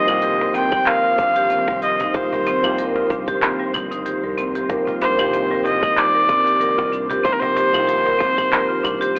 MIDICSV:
0, 0, Header, 1, 9, 480
1, 0, Start_track
1, 0, Key_signature, -3, "minor"
1, 0, Tempo, 638298
1, 1612, Time_signature, 4, 2, 24, 8
1, 6912, End_track
2, 0, Start_track
2, 0, Title_t, "Kamancheh"
2, 0, Program_c, 0, 110
2, 0, Note_on_c, 0, 75, 109
2, 388, Note_off_c, 0, 75, 0
2, 420, Note_on_c, 0, 79, 104
2, 657, Note_on_c, 0, 77, 121
2, 668, Note_off_c, 0, 79, 0
2, 1374, Note_off_c, 0, 77, 0
2, 1379, Note_on_c, 0, 75, 91
2, 1616, Note_on_c, 0, 72, 93
2, 1628, Note_off_c, 0, 75, 0
2, 2334, Note_off_c, 0, 72, 0
2, 3776, Note_on_c, 0, 72, 103
2, 4224, Note_off_c, 0, 72, 0
2, 4257, Note_on_c, 0, 75, 102
2, 4493, Note_on_c, 0, 74, 112
2, 4504, Note_off_c, 0, 75, 0
2, 5212, Note_off_c, 0, 74, 0
2, 5447, Note_on_c, 0, 72, 120
2, 5506, Note_on_c, 0, 70, 101
2, 5518, Note_off_c, 0, 72, 0
2, 5562, Note_on_c, 0, 72, 127
2, 5574, Note_off_c, 0, 70, 0
2, 6889, Note_off_c, 0, 72, 0
2, 6912, End_track
3, 0, Start_track
3, 0, Title_t, "Synth texture"
3, 0, Program_c, 1, 99
3, 0, Note_on_c, 1, 72, 89
3, 6912, Note_off_c, 1, 72, 0
3, 6912, End_track
4, 0, Start_track
4, 0, Title_t, "Marimba"
4, 0, Program_c, 2, 12
4, 61, Note_on_c, 2, 63, 70
4, 165, Note_off_c, 2, 63, 0
4, 170, Note_on_c, 2, 67, 74
4, 246, Note_off_c, 2, 67, 0
4, 300, Note_on_c, 2, 70, 77
4, 399, Note_off_c, 2, 70, 0
4, 408, Note_on_c, 2, 60, 106
4, 535, Note_off_c, 2, 60, 0
4, 541, Note_on_c, 2, 67, 75
4, 604, Note_off_c, 2, 67, 0
4, 649, Note_on_c, 2, 70, 98
4, 776, Note_off_c, 2, 70, 0
4, 782, Note_on_c, 2, 65, 80
4, 885, Note_off_c, 2, 65, 0
4, 891, Note_on_c, 2, 62, 76
4, 967, Note_off_c, 2, 62, 0
4, 1024, Note_on_c, 2, 67, 105
4, 1126, Note_off_c, 2, 67, 0
4, 1131, Note_on_c, 2, 60, 80
4, 1257, Note_off_c, 2, 60, 0
4, 1264, Note_on_c, 2, 55, 75
4, 1366, Note_off_c, 2, 55, 0
4, 1372, Note_on_c, 2, 67, 73
4, 1491, Note_off_c, 2, 67, 0
4, 1506, Note_on_c, 2, 63, 75
4, 1607, Note_off_c, 2, 63, 0
4, 1614, Note_on_c, 2, 67, 79
4, 1688, Note_off_c, 2, 67, 0
4, 1748, Note_on_c, 2, 70, 78
4, 1843, Note_off_c, 2, 70, 0
4, 1856, Note_on_c, 2, 60, 101
4, 1979, Note_off_c, 2, 60, 0
4, 1989, Note_on_c, 2, 67, 72
4, 2048, Note_off_c, 2, 67, 0
4, 2095, Note_on_c, 2, 70, 103
4, 2219, Note_off_c, 2, 70, 0
4, 2227, Note_on_c, 2, 65, 77
4, 2328, Note_off_c, 2, 65, 0
4, 2336, Note_on_c, 2, 62, 79
4, 2409, Note_off_c, 2, 62, 0
4, 2464, Note_on_c, 2, 67, 107
4, 2567, Note_off_c, 2, 67, 0
4, 2573, Note_on_c, 2, 60, 78
4, 2698, Note_off_c, 2, 60, 0
4, 2702, Note_on_c, 2, 55, 77
4, 2806, Note_off_c, 2, 55, 0
4, 2810, Note_on_c, 2, 67, 77
4, 2930, Note_off_c, 2, 67, 0
4, 2942, Note_on_c, 2, 63, 83
4, 3046, Note_off_c, 2, 63, 0
4, 3051, Note_on_c, 2, 67, 80
4, 3127, Note_off_c, 2, 67, 0
4, 3185, Note_on_c, 2, 70, 72
4, 3282, Note_off_c, 2, 70, 0
4, 3291, Note_on_c, 2, 60, 107
4, 3417, Note_off_c, 2, 60, 0
4, 3425, Note_on_c, 2, 67, 80
4, 3486, Note_off_c, 2, 67, 0
4, 3534, Note_on_c, 2, 70, 104
4, 3658, Note_off_c, 2, 70, 0
4, 3663, Note_on_c, 2, 65, 82
4, 3766, Note_off_c, 2, 65, 0
4, 3772, Note_on_c, 2, 62, 77
4, 3847, Note_off_c, 2, 62, 0
4, 3903, Note_on_c, 2, 67, 109
4, 4006, Note_off_c, 2, 67, 0
4, 4012, Note_on_c, 2, 60, 84
4, 4137, Note_off_c, 2, 60, 0
4, 4142, Note_on_c, 2, 55, 80
4, 4245, Note_off_c, 2, 55, 0
4, 4248, Note_on_c, 2, 67, 79
4, 4369, Note_off_c, 2, 67, 0
4, 4382, Note_on_c, 2, 63, 80
4, 4485, Note_off_c, 2, 63, 0
4, 4487, Note_on_c, 2, 67, 81
4, 4565, Note_off_c, 2, 67, 0
4, 4620, Note_on_c, 2, 70, 78
4, 4719, Note_off_c, 2, 70, 0
4, 4730, Note_on_c, 2, 60, 103
4, 4856, Note_off_c, 2, 60, 0
4, 4859, Note_on_c, 2, 67, 81
4, 4923, Note_off_c, 2, 67, 0
4, 4965, Note_on_c, 2, 70, 105
4, 5094, Note_off_c, 2, 70, 0
4, 5097, Note_on_c, 2, 65, 77
4, 5203, Note_off_c, 2, 65, 0
4, 5206, Note_on_c, 2, 62, 79
4, 5284, Note_off_c, 2, 62, 0
4, 5336, Note_on_c, 2, 67, 104
4, 5442, Note_on_c, 2, 60, 89
4, 5443, Note_off_c, 2, 67, 0
4, 5572, Note_off_c, 2, 60, 0
4, 5577, Note_on_c, 2, 55, 81
4, 5683, Note_off_c, 2, 55, 0
4, 5686, Note_on_c, 2, 67, 79
4, 5808, Note_off_c, 2, 67, 0
4, 5815, Note_on_c, 2, 63, 75
4, 5921, Note_on_c, 2, 67, 81
4, 5922, Note_off_c, 2, 63, 0
4, 6002, Note_off_c, 2, 67, 0
4, 6053, Note_on_c, 2, 70, 79
4, 6156, Note_off_c, 2, 70, 0
4, 6159, Note_on_c, 2, 60, 108
4, 6291, Note_off_c, 2, 60, 0
4, 6294, Note_on_c, 2, 67, 81
4, 6360, Note_off_c, 2, 67, 0
4, 6399, Note_on_c, 2, 70, 102
4, 6531, Note_off_c, 2, 70, 0
4, 6531, Note_on_c, 2, 65, 81
4, 6640, Note_off_c, 2, 65, 0
4, 6643, Note_on_c, 2, 62, 74
4, 6723, Note_off_c, 2, 62, 0
4, 6775, Note_on_c, 2, 67, 111
4, 6882, Note_off_c, 2, 67, 0
4, 6884, Note_on_c, 2, 60, 79
4, 6912, Note_off_c, 2, 60, 0
4, 6912, End_track
5, 0, Start_track
5, 0, Title_t, "Ambient pad"
5, 0, Program_c, 3, 92
5, 0, Note_on_c, 3, 51, 77
5, 0, Note_on_c, 3, 55, 67
5, 0, Note_on_c, 3, 58, 71
5, 0, Note_on_c, 3, 70, 86
5, 0, Note_on_c, 3, 72, 69
5, 6912, Note_off_c, 3, 51, 0
5, 6912, Note_off_c, 3, 55, 0
5, 6912, Note_off_c, 3, 58, 0
5, 6912, Note_off_c, 3, 70, 0
5, 6912, Note_off_c, 3, 72, 0
5, 6912, End_track
6, 0, Start_track
6, 0, Title_t, "Tine electric piano"
6, 0, Program_c, 4, 4
6, 0, Control_c, 4, 64, 127
6, 0, Note_on_c, 4, 53, 92
6, 0, Note_on_c, 4, 58, 77
6, 0, Note_on_c, 4, 63, 80
6, 0, Note_on_c, 4, 67, 97
6, 50, Note_off_c, 4, 53, 0
6, 50, Note_on_c, 4, 53, 90
6, 58, Note_off_c, 4, 58, 0
6, 58, Note_on_c, 4, 58, 80
6, 70, Note_on_c, 4, 51, 88
6, 80, Note_off_c, 4, 67, 0
6, 80, Note_on_c, 4, 67, 100
6, 1579, Note_off_c, 4, 53, 0
6, 1583, Note_off_c, 4, 58, 0
6, 1589, Note_off_c, 4, 51, 0
6, 1594, Note_off_c, 4, 67, 0
6, 1609, Note_on_c, 4, 53, 83
6, 1614, Note_on_c, 4, 58, 66
6, 1620, Note_on_c, 4, 51, 73
6, 1623, Note_on_c, 4, 67, 83
6, 1951, Note_off_c, 4, 53, 0
6, 1953, Note_off_c, 4, 58, 0
6, 1956, Note_off_c, 4, 51, 0
6, 1958, Note_off_c, 4, 67, 0
6, 1973, Note_on_c, 4, 53, 97
6, 1982, Note_on_c, 4, 58, 95
6, 1992, Note_on_c, 4, 51, 95
6, 2002, Note_on_c, 4, 67, 112
6, 3500, Note_off_c, 4, 53, 0
6, 3505, Note_off_c, 4, 58, 0
6, 3510, Note_off_c, 4, 51, 0
6, 3515, Note_off_c, 4, 67, 0
6, 3527, Note_on_c, 4, 53, 99
6, 3532, Note_on_c, 4, 58, 86
6, 3535, Note_off_c, 4, 63, 0
6, 3535, Note_on_c, 4, 63, 83
6, 3541, Note_on_c, 4, 67, 101
6, 3870, Note_off_c, 4, 53, 0
6, 3872, Note_off_c, 4, 58, 0
6, 3874, Note_off_c, 4, 63, 0
6, 3877, Note_off_c, 4, 67, 0
6, 3891, Note_on_c, 4, 53, 91
6, 3900, Note_on_c, 4, 58, 87
6, 3910, Note_on_c, 4, 51, 87
6, 3920, Note_on_c, 4, 67, 97
6, 5420, Note_off_c, 4, 53, 0
6, 5424, Note_off_c, 4, 58, 0
6, 5429, Note_off_c, 4, 51, 0
6, 5434, Note_off_c, 4, 67, 0
6, 5448, Note_on_c, 4, 53, 82
6, 5452, Note_on_c, 4, 58, 67
6, 5458, Note_on_c, 4, 51, 73
6, 5463, Note_on_c, 4, 67, 85
6, 5790, Note_off_c, 4, 53, 0
6, 5792, Note_off_c, 4, 58, 0
6, 5795, Note_off_c, 4, 51, 0
6, 5798, Note_off_c, 4, 67, 0
6, 5811, Note_on_c, 4, 53, 93
6, 5821, Note_on_c, 4, 58, 90
6, 5831, Note_on_c, 4, 51, 91
6, 5841, Note_on_c, 4, 67, 109
6, 6912, Note_off_c, 4, 51, 0
6, 6912, Note_off_c, 4, 53, 0
6, 6912, Note_off_c, 4, 58, 0
6, 6912, Note_off_c, 4, 67, 0
6, 6912, End_track
7, 0, Start_track
7, 0, Title_t, "Analog synth bass"
7, 0, Program_c, 5, 38
7, 64, Note_on_c, 5, 36, 105
7, 364, Note_off_c, 5, 36, 0
7, 413, Note_on_c, 5, 36, 79
7, 726, Note_off_c, 5, 36, 0
7, 891, Note_on_c, 5, 31, 91
7, 1205, Note_off_c, 5, 31, 0
7, 1264, Note_on_c, 5, 36, 97
7, 1565, Note_off_c, 5, 36, 0
7, 1614, Note_on_c, 5, 36, 102
7, 1708, Note_off_c, 5, 36, 0
7, 1987, Note_on_c, 5, 36, 97
7, 2286, Note_off_c, 5, 36, 0
7, 2333, Note_on_c, 5, 36, 75
7, 2646, Note_off_c, 5, 36, 0
7, 2816, Note_on_c, 5, 31, 87
7, 3128, Note_off_c, 5, 31, 0
7, 3185, Note_on_c, 5, 36, 91
7, 3485, Note_off_c, 5, 36, 0
7, 3532, Note_on_c, 5, 36, 96
7, 3627, Note_off_c, 5, 36, 0
7, 3902, Note_on_c, 5, 36, 101
7, 4203, Note_off_c, 5, 36, 0
7, 4252, Note_on_c, 5, 36, 83
7, 4566, Note_off_c, 5, 36, 0
7, 4730, Note_on_c, 5, 31, 89
7, 5045, Note_off_c, 5, 31, 0
7, 5101, Note_on_c, 5, 36, 102
7, 5403, Note_off_c, 5, 36, 0
7, 5450, Note_on_c, 5, 36, 101
7, 5547, Note_off_c, 5, 36, 0
7, 5825, Note_on_c, 5, 36, 100
7, 6125, Note_off_c, 5, 36, 0
7, 6170, Note_on_c, 5, 36, 83
7, 6485, Note_off_c, 5, 36, 0
7, 6652, Note_on_c, 5, 36, 115
7, 6748, Note_off_c, 5, 36, 0
7, 6912, End_track
8, 0, Start_track
8, 0, Title_t, "Cajon"
8, 310, Note_on_c, 9, 38, 68
8, 385, Note_off_c, 9, 38, 0
8, 412, Note_on_c, 9, 38, 55
8, 487, Note_off_c, 9, 38, 0
8, 1261, Note_on_c, 9, 38, 82
8, 1336, Note_off_c, 9, 38, 0
8, 1509, Note_on_c, 9, 36, 90
8, 1584, Note_off_c, 9, 36, 0
8, 1620, Note_on_c, 9, 38, 65
8, 1695, Note_off_c, 9, 38, 0
8, 1750, Note_on_c, 9, 36, 88
8, 1825, Note_off_c, 9, 36, 0
8, 1857, Note_on_c, 9, 36, 82
8, 1859, Note_on_c, 9, 38, 56
8, 1932, Note_off_c, 9, 36, 0
8, 1934, Note_off_c, 9, 38, 0
8, 2223, Note_on_c, 9, 38, 59
8, 2298, Note_off_c, 9, 38, 0
8, 2336, Note_on_c, 9, 38, 64
8, 2412, Note_off_c, 9, 38, 0
8, 2710, Note_on_c, 9, 38, 31
8, 2785, Note_off_c, 9, 38, 0
8, 2819, Note_on_c, 9, 36, 82
8, 2894, Note_off_c, 9, 36, 0
8, 3530, Note_on_c, 9, 38, 69
8, 3605, Note_off_c, 9, 38, 0
8, 3665, Note_on_c, 9, 36, 82
8, 3741, Note_off_c, 9, 36, 0
8, 3773, Note_on_c, 9, 36, 87
8, 3773, Note_on_c, 9, 38, 62
8, 3848, Note_off_c, 9, 36, 0
8, 3848, Note_off_c, 9, 38, 0
8, 4144, Note_on_c, 9, 38, 58
8, 4219, Note_off_c, 9, 38, 0
8, 4252, Note_on_c, 9, 38, 61
8, 4327, Note_off_c, 9, 38, 0
8, 5104, Note_on_c, 9, 38, 79
8, 5179, Note_off_c, 9, 38, 0
8, 5341, Note_on_c, 9, 36, 86
8, 5416, Note_off_c, 9, 36, 0
8, 5454, Note_on_c, 9, 38, 79
8, 5529, Note_off_c, 9, 38, 0
8, 5581, Note_on_c, 9, 36, 95
8, 5656, Note_off_c, 9, 36, 0
8, 5688, Note_on_c, 9, 38, 60
8, 5692, Note_on_c, 9, 36, 86
8, 5763, Note_off_c, 9, 38, 0
8, 5767, Note_off_c, 9, 36, 0
8, 6062, Note_on_c, 9, 38, 65
8, 6137, Note_off_c, 9, 38, 0
8, 6170, Note_on_c, 9, 38, 57
8, 6246, Note_off_c, 9, 38, 0
8, 6542, Note_on_c, 9, 38, 32
8, 6617, Note_off_c, 9, 38, 0
8, 6650, Note_on_c, 9, 36, 85
8, 6726, Note_off_c, 9, 36, 0
8, 6912, End_track
9, 0, Start_track
9, 0, Title_t, "Drums"
9, 59, Note_on_c, 9, 46, 43
9, 59, Note_on_c, 9, 75, 81
9, 63, Note_on_c, 9, 69, 33
9, 135, Note_off_c, 9, 46, 0
9, 135, Note_off_c, 9, 75, 0
9, 138, Note_off_c, 9, 69, 0
9, 165, Note_on_c, 9, 46, 52
9, 169, Note_on_c, 9, 69, 49
9, 240, Note_off_c, 9, 46, 0
9, 244, Note_off_c, 9, 69, 0
9, 411, Note_on_c, 9, 69, 82
9, 486, Note_off_c, 9, 69, 0
9, 540, Note_on_c, 9, 46, 38
9, 540, Note_on_c, 9, 75, 60
9, 543, Note_on_c, 9, 36, 113
9, 544, Note_on_c, 9, 69, 31
9, 616, Note_off_c, 9, 46, 0
9, 616, Note_off_c, 9, 75, 0
9, 618, Note_off_c, 9, 36, 0
9, 619, Note_off_c, 9, 69, 0
9, 648, Note_on_c, 9, 39, 82
9, 648, Note_on_c, 9, 46, 59
9, 652, Note_on_c, 9, 69, 48
9, 723, Note_off_c, 9, 39, 0
9, 723, Note_off_c, 9, 46, 0
9, 727, Note_off_c, 9, 69, 0
9, 889, Note_on_c, 9, 46, 52
9, 891, Note_on_c, 9, 36, 103
9, 893, Note_on_c, 9, 69, 78
9, 965, Note_off_c, 9, 46, 0
9, 967, Note_off_c, 9, 36, 0
9, 969, Note_off_c, 9, 69, 0
9, 1021, Note_on_c, 9, 46, 42
9, 1025, Note_on_c, 9, 69, 33
9, 1096, Note_off_c, 9, 46, 0
9, 1100, Note_off_c, 9, 69, 0
9, 1128, Note_on_c, 9, 46, 55
9, 1132, Note_on_c, 9, 69, 46
9, 1203, Note_off_c, 9, 46, 0
9, 1207, Note_off_c, 9, 69, 0
9, 1264, Note_on_c, 9, 36, 65
9, 1339, Note_off_c, 9, 36, 0
9, 1369, Note_on_c, 9, 46, 30
9, 1373, Note_on_c, 9, 69, 82
9, 1444, Note_off_c, 9, 46, 0
9, 1448, Note_off_c, 9, 69, 0
9, 1502, Note_on_c, 9, 46, 41
9, 1506, Note_on_c, 9, 69, 37
9, 1577, Note_off_c, 9, 46, 0
9, 1581, Note_off_c, 9, 69, 0
9, 1611, Note_on_c, 9, 46, 54
9, 1613, Note_on_c, 9, 36, 104
9, 1615, Note_on_c, 9, 69, 41
9, 1687, Note_off_c, 9, 46, 0
9, 1688, Note_off_c, 9, 36, 0
9, 1691, Note_off_c, 9, 69, 0
9, 1749, Note_on_c, 9, 69, 30
9, 1824, Note_off_c, 9, 69, 0
9, 1853, Note_on_c, 9, 46, 30
9, 1857, Note_on_c, 9, 69, 69
9, 1928, Note_off_c, 9, 46, 0
9, 1932, Note_off_c, 9, 69, 0
9, 1985, Note_on_c, 9, 46, 46
9, 1985, Note_on_c, 9, 75, 83
9, 1989, Note_on_c, 9, 69, 31
9, 2060, Note_off_c, 9, 46, 0
9, 2060, Note_off_c, 9, 75, 0
9, 2064, Note_off_c, 9, 69, 0
9, 2093, Note_on_c, 9, 46, 58
9, 2097, Note_on_c, 9, 69, 45
9, 2169, Note_off_c, 9, 46, 0
9, 2173, Note_off_c, 9, 69, 0
9, 2333, Note_on_c, 9, 36, 95
9, 2338, Note_on_c, 9, 69, 80
9, 2408, Note_off_c, 9, 36, 0
9, 2413, Note_off_c, 9, 69, 0
9, 2465, Note_on_c, 9, 36, 65
9, 2465, Note_on_c, 9, 46, 42
9, 2468, Note_on_c, 9, 69, 30
9, 2540, Note_off_c, 9, 36, 0
9, 2540, Note_off_c, 9, 46, 0
9, 2544, Note_off_c, 9, 69, 0
9, 2573, Note_on_c, 9, 39, 77
9, 2573, Note_on_c, 9, 46, 60
9, 2577, Note_on_c, 9, 69, 45
9, 2649, Note_off_c, 9, 39, 0
9, 2649, Note_off_c, 9, 46, 0
9, 2652, Note_off_c, 9, 69, 0
9, 2814, Note_on_c, 9, 46, 49
9, 2814, Note_on_c, 9, 75, 79
9, 2818, Note_on_c, 9, 69, 78
9, 2889, Note_off_c, 9, 46, 0
9, 2889, Note_off_c, 9, 75, 0
9, 2893, Note_off_c, 9, 69, 0
9, 2946, Note_on_c, 9, 46, 47
9, 2950, Note_on_c, 9, 69, 33
9, 3021, Note_off_c, 9, 46, 0
9, 3025, Note_off_c, 9, 69, 0
9, 3052, Note_on_c, 9, 46, 54
9, 3056, Note_on_c, 9, 69, 46
9, 3127, Note_off_c, 9, 46, 0
9, 3131, Note_off_c, 9, 69, 0
9, 3293, Note_on_c, 9, 46, 32
9, 3297, Note_on_c, 9, 69, 78
9, 3368, Note_off_c, 9, 46, 0
9, 3372, Note_off_c, 9, 69, 0
9, 3423, Note_on_c, 9, 46, 49
9, 3427, Note_on_c, 9, 69, 35
9, 3499, Note_off_c, 9, 46, 0
9, 3503, Note_off_c, 9, 69, 0
9, 3531, Note_on_c, 9, 46, 56
9, 3532, Note_on_c, 9, 36, 106
9, 3535, Note_on_c, 9, 69, 41
9, 3607, Note_off_c, 9, 36, 0
9, 3607, Note_off_c, 9, 46, 0
9, 3611, Note_off_c, 9, 69, 0
9, 3666, Note_on_c, 9, 69, 29
9, 3742, Note_off_c, 9, 69, 0
9, 3771, Note_on_c, 9, 46, 32
9, 3775, Note_on_c, 9, 69, 70
9, 3846, Note_off_c, 9, 46, 0
9, 3850, Note_off_c, 9, 69, 0
9, 3903, Note_on_c, 9, 46, 48
9, 3903, Note_on_c, 9, 75, 82
9, 3907, Note_on_c, 9, 69, 32
9, 3978, Note_off_c, 9, 46, 0
9, 3978, Note_off_c, 9, 75, 0
9, 3982, Note_off_c, 9, 69, 0
9, 4012, Note_on_c, 9, 46, 60
9, 4016, Note_on_c, 9, 69, 43
9, 4087, Note_off_c, 9, 46, 0
9, 4091, Note_off_c, 9, 69, 0
9, 4256, Note_on_c, 9, 69, 75
9, 4331, Note_off_c, 9, 69, 0
9, 4382, Note_on_c, 9, 36, 111
9, 4385, Note_on_c, 9, 46, 43
9, 4385, Note_on_c, 9, 75, 61
9, 4388, Note_on_c, 9, 69, 30
9, 4458, Note_off_c, 9, 36, 0
9, 4460, Note_off_c, 9, 46, 0
9, 4460, Note_off_c, 9, 75, 0
9, 4464, Note_off_c, 9, 69, 0
9, 4491, Note_on_c, 9, 39, 84
9, 4491, Note_on_c, 9, 46, 61
9, 4495, Note_on_c, 9, 69, 45
9, 4567, Note_off_c, 9, 39, 0
9, 4567, Note_off_c, 9, 46, 0
9, 4570, Note_off_c, 9, 69, 0
9, 4730, Note_on_c, 9, 36, 94
9, 4731, Note_on_c, 9, 46, 55
9, 4735, Note_on_c, 9, 69, 80
9, 4805, Note_off_c, 9, 36, 0
9, 4806, Note_off_c, 9, 46, 0
9, 4810, Note_off_c, 9, 69, 0
9, 4865, Note_on_c, 9, 46, 48
9, 4869, Note_on_c, 9, 69, 32
9, 4940, Note_off_c, 9, 46, 0
9, 4944, Note_off_c, 9, 69, 0
9, 4970, Note_on_c, 9, 46, 56
9, 4974, Note_on_c, 9, 69, 44
9, 5046, Note_off_c, 9, 46, 0
9, 5050, Note_off_c, 9, 69, 0
9, 5102, Note_on_c, 9, 36, 63
9, 5177, Note_off_c, 9, 36, 0
9, 5211, Note_on_c, 9, 46, 31
9, 5215, Note_on_c, 9, 69, 75
9, 5287, Note_off_c, 9, 46, 0
9, 5290, Note_off_c, 9, 69, 0
9, 5343, Note_on_c, 9, 46, 46
9, 5347, Note_on_c, 9, 69, 34
9, 5418, Note_off_c, 9, 46, 0
9, 5422, Note_off_c, 9, 69, 0
9, 5450, Note_on_c, 9, 36, 117
9, 5451, Note_on_c, 9, 46, 56
9, 5455, Note_on_c, 9, 69, 41
9, 5525, Note_off_c, 9, 36, 0
9, 5527, Note_off_c, 9, 46, 0
9, 5531, Note_off_c, 9, 69, 0
9, 5586, Note_on_c, 9, 69, 32
9, 5661, Note_off_c, 9, 69, 0
9, 5691, Note_on_c, 9, 46, 32
9, 5695, Note_on_c, 9, 69, 78
9, 5766, Note_off_c, 9, 46, 0
9, 5770, Note_off_c, 9, 69, 0
9, 5823, Note_on_c, 9, 46, 47
9, 5823, Note_on_c, 9, 75, 82
9, 5826, Note_on_c, 9, 69, 32
9, 5898, Note_off_c, 9, 46, 0
9, 5898, Note_off_c, 9, 75, 0
9, 5902, Note_off_c, 9, 69, 0
9, 5930, Note_on_c, 9, 46, 62
9, 5934, Note_on_c, 9, 69, 45
9, 6006, Note_off_c, 9, 46, 0
9, 6010, Note_off_c, 9, 69, 0
9, 6066, Note_on_c, 9, 69, 31
9, 6141, Note_off_c, 9, 69, 0
9, 6170, Note_on_c, 9, 36, 104
9, 6171, Note_on_c, 9, 46, 37
9, 6175, Note_on_c, 9, 69, 76
9, 6245, Note_off_c, 9, 36, 0
9, 6247, Note_off_c, 9, 46, 0
9, 6250, Note_off_c, 9, 69, 0
9, 6302, Note_on_c, 9, 36, 64
9, 6303, Note_on_c, 9, 46, 45
9, 6303, Note_on_c, 9, 75, 64
9, 6307, Note_on_c, 9, 69, 32
9, 6377, Note_off_c, 9, 36, 0
9, 6378, Note_off_c, 9, 46, 0
9, 6378, Note_off_c, 9, 75, 0
9, 6382, Note_off_c, 9, 69, 0
9, 6411, Note_on_c, 9, 39, 86
9, 6411, Note_on_c, 9, 46, 63
9, 6415, Note_on_c, 9, 69, 45
9, 6486, Note_off_c, 9, 39, 0
9, 6486, Note_off_c, 9, 46, 0
9, 6490, Note_off_c, 9, 69, 0
9, 6652, Note_on_c, 9, 46, 56
9, 6652, Note_on_c, 9, 75, 85
9, 6656, Note_on_c, 9, 69, 79
9, 6727, Note_off_c, 9, 46, 0
9, 6727, Note_off_c, 9, 75, 0
9, 6731, Note_off_c, 9, 69, 0
9, 6784, Note_on_c, 9, 46, 47
9, 6788, Note_on_c, 9, 69, 33
9, 6859, Note_off_c, 9, 46, 0
9, 6863, Note_off_c, 9, 69, 0
9, 6912, End_track
0, 0, End_of_file